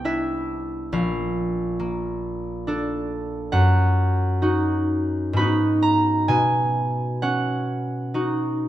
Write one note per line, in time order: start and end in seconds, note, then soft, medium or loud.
0.00 0.97 C2 soft
0.00 0.96 B3 soft
0.00 0.96 G5 medium
0.00 0.54 A5 medium
0.04 2.66 D4 soft
0.04 0.96 E4 soft
0.04 0.96 E5 medium
0.92 3.56 A#1 medium
0.92 3.56 F5 medium
1.80 5.42 A#3 soft
2.67 3.57 D4 soft
2.67 3.57 A4 soft
3.52 5.41 F#2 medium
3.52 7.21 F#5 medium
4.42 5.35 D#4 soft
4.42 5.35 F#4 soft
5.33 6.33 G#2 medium
5.33 8.68 B3 soft
5.33 5.39 D#4 soft
5.33 5.40 F#4 soft
5.33 8.68 B5 medium
5.39 8.13 D#4 soft
5.39 8.13 F#4 soft
5.82 6.62 A#5 medium
6.28 8.68 B2 medium
6.28 8.68 G#5 medium
7.22 8.68 C#4 soft
7.22 8.68 F#5 medium
8.14 8.68 D#4 soft
8.14 8.68 F#4 soft